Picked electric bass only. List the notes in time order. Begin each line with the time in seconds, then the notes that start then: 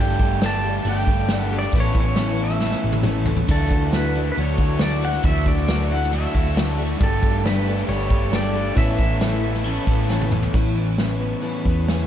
Already playing: G1
0.19 G1
0.85 G1
1.07 G1
1.73 A1
1.95 A1
2.84 A1
3.49 D2
3.71 D2
4.38 D2
4.58 D2
5.24 D2
5.46 D2
6.35 D2
7.01 G1
7.22 G1
7.89 G1
8.11 G1
8.77 A1
8.98 A1
9.87 A1
10.54 A1
11.66 E2